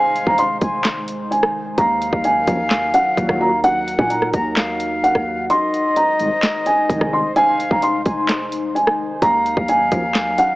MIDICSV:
0, 0, Header, 1, 7, 480
1, 0, Start_track
1, 0, Tempo, 465116
1, 1836, Time_signature, 4, 2, 24, 8
1, 10892, End_track
2, 0, Start_track
2, 0, Title_t, "Felt piano"
2, 0, Program_c, 0, 0
2, 0, Note_on_c, 0, 80, 110
2, 254, Note_off_c, 0, 80, 0
2, 277, Note_on_c, 0, 82, 84
2, 377, Note_off_c, 0, 82, 0
2, 397, Note_on_c, 0, 84, 86
2, 1315, Note_off_c, 0, 84, 0
2, 1352, Note_on_c, 0, 80, 76
2, 1805, Note_off_c, 0, 80, 0
2, 1834, Note_on_c, 0, 82, 102
2, 2286, Note_off_c, 0, 82, 0
2, 2318, Note_on_c, 0, 80, 79
2, 2996, Note_off_c, 0, 80, 0
2, 3035, Note_on_c, 0, 78, 87
2, 3487, Note_off_c, 0, 78, 0
2, 3516, Note_on_c, 0, 82, 87
2, 3717, Note_off_c, 0, 82, 0
2, 3756, Note_on_c, 0, 78, 114
2, 4094, Note_off_c, 0, 78, 0
2, 4118, Note_on_c, 0, 80, 76
2, 4218, Note_off_c, 0, 80, 0
2, 4233, Note_on_c, 0, 82, 74
2, 5153, Note_off_c, 0, 82, 0
2, 5197, Note_on_c, 0, 78, 78
2, 5648, Note_off_c, 0, 78, 0
2, 5676, Note_on_c, 0, 84, 102
2, 6127, Note_off_c, 0, 84, 0
2, 6156, Note_on_c, 0, 82, 93
2, 6834, Note_off_c, 0, 82, 0
2, 6877, Note_on_c, 0, 80, 80
2, 7328, Note_off_c, 0, 80, 0
2, 7360, Note_on_c, 0, 84, 84
2, 7559, Note_off_c, 0, 84, 0
2, 7596, Note_on_c, 0, 80, 115
2, 7934, Note_off_c, 0, 80, 0
2, 7958, Note_on_c, 0, 82, 85
2, 8058, Note_off_c, 0, 82, 0
2, 8078, Note_on_c, 0, 84, 84
2, 8996, Note_off_c, 0, 84, 0
2, 9031, Note_on_c, 0, 80, 76
2, 9484, Note_off_c, 0, 80, 0
2, 9515, Note_on_c, 0, 82, 107
2, 9967, Note_off_c, 0, 82, 0
2, 9999, Note_on_c, 0, 80, 82
2, 10676, Note_off_c, 0, 80, 0
2, 10716, Note_on_c, 0, 78, 87
2, 10892, Note_off_c, 0, 78, 0
2, 10892, End_track
3, 0, Start_track
3, 0, Title_t, "Flute"
3, 0, Program_c, 1, 73
3, 0, Note_on_c, 1, 77, 107
3, 593, Note_off_c, 1, 77, 0
3, 636, Note_on_c, 1, 80, 80
3, 864, Note_off_c, 1, 80, 0
3, 1839, Note_on_c, 1, 77, 115
3, 3716, Note_off_c, 1, 77, 0
3, 3755, Note_on_c, 1, 78, 108
3, 4434, Note_off_c, 1, 78, 0
3, 4475, Note_on_c, 1, 82, 93
3, 4703, Note_off_c, 1, 82, 0
3, 4715, Note_on_c, 1, 77, 94
3, 5634, Note_off_c, 1, 77, 0
3, 5676, Note_on_c, 1, 75, 127
3, 7554, Note_off_c, 1, 75, 0
3, 7594, Note_on_c, 1, 77, 103
3, 8273, Note_off_c, 1, 77, 0
3, 8318, Note_on_c, 1, 80, 79
3, 8545, Note_off_c, 1, 80, 0
3, 9518, Note_on_c, 1, 77, 112
3, 10892, Note_off_c, 1, 77, 0
3, 10892, End_track
4, 0, Start_track
4, 0, Title_t, "Ambient pad"
4, 0, Program_c, 2, 92
4, 0, Note_on_c, 2, 51, 86
4, 0, Note_on_c, 2, 56, 78
4, 0, Note_on_c, 2, 63, 76
4, 0, Note_on_c, 2, 72, 97
4, 1797, Note_off_c, 2, 56, 0
4, 1797, Note_off_c, 2, 72, 0
4, 1835, Note_on_c, 2, 54, 75
4, 1835, Note_on_c, 2, 70, 93
4, 3714, Note_off_c, 2, 63, 0
4, 3756, Note_on_c, 2, 63, 78
4, 5634, Note_off_c, 2, 51, 0
4, 5637, Note_off_c, 2, 54, 0
4, 5637, Note_off_c, 2, 70, 0
4, 5657, Note_off_c, 2, 63, 0
4, 5674, Note_on_c, 2, 51, 85
4, 5675, Note_on_c, 2, 56, 79
4, 5675, Note_on_c, 2, 63, 79
4, 5675, Note_on_c, 2, 72, 93
4, 9477, Note_off_c, 2, 56, 0
4, 9477, Note_off_c, 2, 72, 0
4, 9515, Note_on_c, 2, 54, 81
4, 9515, Note_on_c, 2, 70, 92
4, 10892, Note_off_c, 2, 51, 0
4, 10892, Note_off_c, 2, 54, 0
4, 10892, Note_off_c, 2, 63, 0
4, 10892, Note_off_c, 2, 70, 0
4, 10892, End_track
5, 0, Start_track
5, 0, Title_t, "Analog polysynth"
5, 0, Program_c, 3, 90
5, 2555, Note_on_c, 3, 34, 89
5, 2555, Note_on_c, 3, 42, 87
5, 2555, Note_on_c, 3, 53, 91
5, 2657, Note_off_c, 3, 34, 0
5, 2657, Note_off_c, 3, 42, 0
5, 2657, Note_off_c, 3, 53, 0
5, 3275, Note_on_c, 3, 39, 95
5, 3275, Note_on_c, 3, 46, 100
5, 3275, Note_on_c, 3, 54, 112
5, 3617, Note_off_c, 3, 39, 0
5, 3617, Note_off_c, 3, 46, 0
5, 3617, Note_off_c, 3, 54, 0
5, 6395, Note_on_c, 3, 51, 101
5, 6396, Note_on_c, 3, 36, 88
5, 6396, Note_on_c, 3, 44, 89
5, 6498, Note_off_c, 3, 36, 0
5, 6498, Note_off_c, 3, 44, 0
5, 6498, Note_off_c, 3, 51, 0
5, 7115, Note_on_c, 3, 51, 110
5, 7116, Note_on_c, 3, 36, 97
5, 7116, Note_on_c, 3, 44, 106
5, 7458, Note_off_c, 3, 36, 0
5, 7458, Note_off_c, 3, 44, 0
5, 7458, Note_off_c, 3, 51, 0
5, 10235, Note_on_c, 3, 42, 86
5, 10236, Note_on_c, 3, 34, 94
5, 10236, Note_on_c, 3, 53, 90
5, 10338, Note_off_c, 3, 34, 0
5, 10338, Note_off_c, 3, 42, 0
5, 10338, Note_off_c, 3, 53, 0
5, 10892, End_track
6, 0, Start_track
6, 0, Title_t, "808-style bass"
6, 0, Program_c, 4, 38
6, 0, Note_on_c, 4, 29, 104
6, 247, Note_off_c, 4, 29, 0
6, 275, Note_on_c, 4, 29, 100
6, 621, Note_off_c, 4, 29, 0
6, 634, Note_on_c, 4, 29, 108
6, 1794, Note_off_c, 4, 29, 0
6, 1835, Note_on_c, 4, 39, 116
6, 2181, Note_off_c, 4, 39, 0
6, 2195, Note_on_c, 4, 39, 102
6, 2541, Note_off_c, 4, 39, 0
6, 2555, Note_on_c, 4, 39, 109
6, 3016, Note_off_c, 4, 39, 0
6, 3275, Note_on_c, 4, 39, 109
6, 3391, Note_off_c, 4, 39, 0
6, 3395, Note_on_c, 4, 39, 104
6, 4087, Note_off_c, 4, 39, 0
6, 4115, Note_on_c, 4, 46, 106
6, 4461, Note_off_c, 4, 46, 0
6, 4475, Note_on_c, 4, 39, 110
6, 5282, Note_off_c, 4, 39, 0
6, 5315, Note_on_c, 4, 39, 108
6, 5661, Note_off_c, 4, 39, 0
6, 7115, Note_on_c, 4, 29, 109
6, 7231, Note_off_c, 4, 29, 0
6, 7235, Note_on_c, 4, 29, 102
6, 7927, Note_off_c, 4, 29, 0
6, 7955, Note_on_c, 4, 29, 106
6, 8301, Note_off_c, 4, 29, 0
6, 8315, Note_on_c, 4, 29, 108
6, 9474, Note_off_c, 4, 29, 0
6, 9516, Note_on_c, 4, 39, 111
6, 9861, Note_off_c, 4, 39, 0
6, 9875, Note_on_c, 4, 39, 106
6, 10221, Note_off_c, 4, 39, 0
6, 10235, Note_on_c, 4, 39, 108
6, 10696, Note_off_c, 4, 39, 0
6, 10892, End_track
7, 0, Start_track
7, 0, Title_t, "Drums"
7, 161, Note_on_c, 9, 42, 80
7, 265, Note_off_c, 9, 42, 0
7, 275, Note_on_c, 9, 36, 87
7, 378, Note_off_c, 9, 36, 0
7, 393, Note_on_c, 9, 42, 85
7, 496, Note_off_c, 9, 42, 0
7, 632, Note_on_c, 9, 42, 60
7, 635, Note_on_c, 9, 36, 89
7, 736, Note_off_c, 9, 42, 0
7, 738, Note_off_c, 9, 36, 0
7, 875, Note_on_c, 9, 39, 96
7, 875, Note_on_c, 9, 42, 92
7, 876, Note_on_c, 9, 38, 119
7, 978, Note_off_c, 9, 39, 0
7, 978, Note_off_c, 9, 42, 0
7, 979, Note_off_c, 9, 38, 0
7, 1113, Note_on_c, 9, 42, 97
7, 1216, Note_off_c, 9, 42, 0
7, 1361, Note_on_c, 9, 42, 87
7, 1465, Note_off_c, 9, 42, 0
7, 1475, Note_on_c, 9, 37, 99
7, 1578, Note_off_c, 9, 37, 0
7, 1835, Note_on_c, 9, 36, 105
7, 1835, Note_on_c, 9, 42, 73
7, 1938, Note_off_c, 9, 42, 0
7, 1939, Note_off_c, 9, 36, 0
7, 2081, Note_on_c, 9, 42, 77
7, 2185, Note_off_c, 9, 42, 0
7, 2195, Note_on_c, 9, 36, 92
7, 2298, Note_off_c, 9, 36, 0
7, 2313, Note_on_c, 9, 42, 83
7, 2416, Note_off_c, 9, 42, 0
7, 2553, Note_on_c, 9, 42, 61
7, 2555, Note_on_c, 9, 36, 90
7, 2656, Note_off_c, 9, 42, 0
7, 2658, Note_off_c, 9, 36, 0
7, 2794, Note_on_c, 9, 39, 98
7, 2795, Note_on_c, 9, 42, 94
7, 2796, Note_on_c, 9, 38, 125
7, 2898, Note_off_c, 9, 39, 0
7, 2898, Note_off_c, 9, 42, 0
7, 2899, Note_off_c, 9, 38, 0
7, 3033, Note_on_c, 9, 42, 93
7, 3136, Note_off_c, 9, 42, 0
7, 3275, Note_on_c, 9, 36, 92
7, 3281, Note_on_c, 9, 42, 86
7, 3378, Note_off_c, 9, 36, 0
7, 3384, Note_off_c, 9, 42, 0
7, 3395, Note_on_c, 9, 36, 97
7, 3395, Note_on_c, 9, 37, 100
7, 3498, Note_off_c, 9, 36, 0
7, 3498, Note_off_c, 9, 37, 0
7, 3755, Note_on_c, 9, 42, 72
7, 3858, Note_off_c, 9, 42, 0
7, 4001, Note_on_c, 9, 42, 81
7, 4105, Note_off_c, 9, 42, 0
7, 4115, Note_on_c, 9, 36, 90
7, 4218, Note_off_c, 9, 36, 0
7, 4233, Note_on_c, 9, 42, 81
7, 4336, Note_off_c, 9, 42, 0
7, 4355, Note_on_c, 9, 37, 72
7, 4458, Note_off_c, 9, 37, 0
7, 4473, Note_on_c, 9, 42, 61
7, 4475, Note_on_c, 9, 36, 93
7, 4576, Note_off_c, 9, 42, 0
7, 4578, Note_off_c, 9, 36, 0
7, 4715, Note_on_c, 9, 39, 102
7, 4716, Note_on_c, 9, 38, 123
7, 4716, Note_on_c, 9, 42, 92
7, 4818, Note_off_c, 9, 39, 0
7, 4819, Note_off_c, 9, 42, 0
7, 4820, Note_off_c, 9, 38, 0
7, 4953, Note_on_c, 9, 42, 94
7, 5056, Note_off_c, 9, 42, 0
7, 5202, Note_on_c, 9, 42, 86
7, 5305, Note_off_c, 9, 42, 0
7, 5315, Note_on_c, 9, 37, 100
7, 5316, Note_on_c, 9, 36, 93
7, 5418, Note_off_c, 9, 37, 0
7, 5419, Note_off_c, 9, 36, 0
7, 5675, Note_on_c, 9, 42, 75
7, 5778, Note_off_c, 9, 42, 0
7, 5922, Note_on_c, 9, 42, 79
7, 6025, Note_off_c, 9, 42, 0
7, 6153, Note_on_c, 9, 42, 83
7, 6257, Note_off_c, 9, 42, 0
7, 6393, Note_on_c, 9, 42, 62
7, 6497, Note_off_c, 9, 42, 0
7, 6635, Note_on_c, 9, 39, 101
7, 6636, Note_on_c, 9, 38, 123
7, 6636, Note_on_c, 9, 42, 95
7, 6739, Note_off_c, 9, 39, 0
7, 6739, Note_off_c, 9, 42, 0
7, 6740, Note_off_c, 9, 38, 0
7, 6873, Note_on_c, 9, 42, 93
7, 6977, Note_off_c, 9, 42, 0
7, 7116, Note_on_c, 9, 36, 93
7, 7122, Note_on_c, 9, 42, 84
7, 7219, Note_off_c, 9, 36, 0
7, 7225, Note_off_c, 9, 42, 0
7, 7236, Note_on_c, 9, 36, 98
7, 7236, Note_on_c, 9, 37, 98
7, 7339, Note_off_c, 9, 36, 0
7, 7339, Note_off_c, 9, 37, 0
7, 7595, Note_on_c, 9, 42, 72
7, 7698, Note_off_c, 9, 42, 0
7, 7842, Note_on_c, 9, 42, 84
7, 7945, Note_off_c, 9, 42, 0
7, 7955, Note_on_c, 9, 36, 94
7, 8058, Note_off_c, 9, 36, 0
7, 8073, Note_on_c, 9, 42, 82
7, 8176, Note_off_c, 9, 42, 0
7, 8313, Note_on_c, 9, 42, 63
7, 8315, Note_on_c, 9, 36, 90
7, 8416, Note_off_c, 9, 42, 0
7, 8418, Note_off_c, 9, 36, 0
7, 8556, Note_on_c, 9, 39, 100
7, 8556, Note_on_c, 9, 42, 91
7, 8557, Note_on_c, 9, 38, 124
7, 8659, Note_off_c, 9, 39, 0
7, 8659, Note_off_c, 9, 42, 0
7, 8660, Note_off_c, 9, 38, 0
7, 8793, Note_on_c, 9, 42, 94
7, 8896, Note_off_c, 9, 42, 0
7, 9042, Note_on_c, 9, 42, 87
7, 9145, Note_off_c, 9, 42, 0
7, 9155, Note_on_c, 9, 37, 99
7, 9259, Note_off_c, 9, 37, 0
7, 9515, Note_on_c, 9, 42, 75
7, 9516, Note_on_c, 9, 36, 104
7, 9618, Note_off_c, 9, 42, 0
7, 9619, Note_off_c, 9, 36, 0
7, 9762, Note_on_c, 9, 42, 83
7, 9865, Note_off_c, 9, 42, 0
7, 9875, Note_on_c, 9, 36, 90
7, 9978, Note_off_c, 9, 36, 0
7, 9993, Note_on_c, 9, 42, 84
7, 10097, Note_off_c, 9, 42, 0
7, 10234, Note_on_c, 9, 42, 61
7, 10235, Note_on_c, 9, 36, 93
7, 10337, Note_off_c, 9, 42, 0
7, 10338, Note_off_c, 9, 36, 0
7, 10475, Note_on_c, 9, 39, 99
7, 10476, Note_on_c, 9, 38, 125
7, 10476, Note_on_c, 9, 42, 93
7, 10578, Note_off_c, 9, 39, 0
7, 10579, Note_off_c, 9, 38, 0
7, 10579, Note_off_c, 9, 42, 0
7, 10713, Note_on_c, 9, 42, 95
7, 10816, Note_off_c, 9, 42, 0
7, 10892, End_track
0, 0, End_of_file